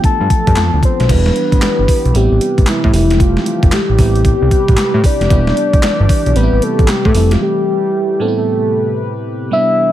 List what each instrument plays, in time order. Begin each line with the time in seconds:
Already playing: analog synth pad F3 B3 A4, fm electric piano A3 B3 D4 F4
0.04 soft synth lead A5, kick, closed hi-hat
0.20 analog synth bass G2
0.30 kick, closed hi-hat
0.47 analog synth bass G2, kick, closed hi-hat
0.56 analog synth bass F2, snare, clap, closed hi-hat
0.74 analog synth bass D2
0.83 soft synth lead C5, kick, closed hi-hat
1.00 analog synth bass B1, snare, closed hi-hat
1.08 analog synth bass E1, analog synth pad E3 D4 G4, fm electric piano G3 B3 D4 E4, soft synth lead B4, kick, closed hi-hat, crash
1.26 snare
1.36 closed hi-hat
1.52 analog synth bass A1, kick, closed hi-hat
1.62 analog synth bass G1, snare, clap, closed hi-hat
1.79 analog synth bass G1
1.88 kick, open hi-hat
2.05 analog synth bass B1, closed hi-hat
2.14 analog synth bass A1, analog synth pad C3 B4, fm electric piano G3 B3 C4 E4, soft synth lead G4, closed hi-hat
2.31 analog synth bass A1
2.41 closed hi-hat
2.58 analog synth bass A1, kick, closed hi-hat
2.67 soft synth lead E4, snare, clap, closed hi-hat
2.84 analog synth bass A2, kick
2.93 analog synth bass F1, analog synth pad E3 A3 G4, fm electric piano G3 A3 C4 E4, soft synth lead E4, open hi-hat
3.10 snare, closed hi-hat
3.20 soft synth lead F4, kick, closed hi-hat
3.37 snare
3.46 soft synth lead F4, closed hi-hat
3.63 analog synth bass F1, kick, closed hi-hat
3.72 analog synth bass A1, soft synth lead G4, snare, clap, closed hi-hat
3.89 analog synth bass A1
3.98 analog synth bass A1, analog synth pad C3 B4, fm electric piano G3 B3 C4 E4, kick, open hi-hat
4.16 closed hi-hat
4.25 kick, closed hi-hat
4.42 analog synth bass C2
4.51 kick, closed hi-hat
4.68 analog synth bass A1, kick, closed hi-hat
4.77 snare, clap, closed hi-hat
4.94 analog synth bass A2
5.04 soft synth lead D5, kick, open hi-hat
5.20 analog synth bass F1, snare, closed hi-hat
5.29 analog synth bass E1, analog synth pad E3 D4, fm electric piano G3 B3 D4 E4, kick, closed hi-hat
5.47 snare
5.57 closed hi-hat
5.73 analog synth bass A1, kick, closed hi-hat
5.83 analog synth bass G1, snare, clap, closed hi-hat
6.00 analog synth bass G1
6.09 kick, open hi-hat
6.26 analog synth bass B1, closed hi-hat
6.35 analog synth bass A1, analog synth pad C3 B4, fm electric piano G3 B3 C4 D4, soft synth lead B4, closed hi-hat
6.43 fm electric piano E4
6.52 analog synth bass A1
6.62 soft synth lead A4, closed hi-hat
6.79 analog synth bass A1, kick, closed hi-hat
6.88 soft synth lead G4, snare, clap, closed hi-hat
7.05 analog synth bass A2, soft synth lead A4, kick
7.14 analog synth bass F1, analog synth pad E3 A3, fm electric piano G3 A3 C4 E4, open hi-hat
7.31 soft synth lead F4, snare, closed hi-hat
7.43 soft synth lead G4
8.20 fm electric piano A2 G3 B3 C4 D4, analog synth pad C3 B4, soft synth lead A4
8.28 fm electric piano E4
8.38 soft synth lead A4
9.51 analog synth pad E3 D4 G4, fm electric piano G3 B3 D4 E4, soft synth lead E5